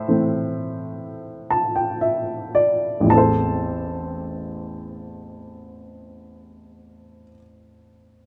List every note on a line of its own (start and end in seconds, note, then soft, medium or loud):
0.00 3.05 A2 medium
0.00 1.98 A4 medium
0.00 1.98 C5 medium
0.00 1.97 E5 medium
0.08 3.05 E3 soft
0.08 3.06 A3 soft
0.08 3.06 C4 soft
1.50 1.74 A5 medium
1.76 2.00 G5 medium
2.01 2.51 E5 medium
2.55 3.05 D5 medium
3.00 7.24 A1 soft
3.00 7.27 E2 soft
3.07 7.30 E3 soft
3.07 7.34 C4 soft
3.07 7.33 A5 medium
3.15 7.38 A4 soft
3.15 7.41 C5 medium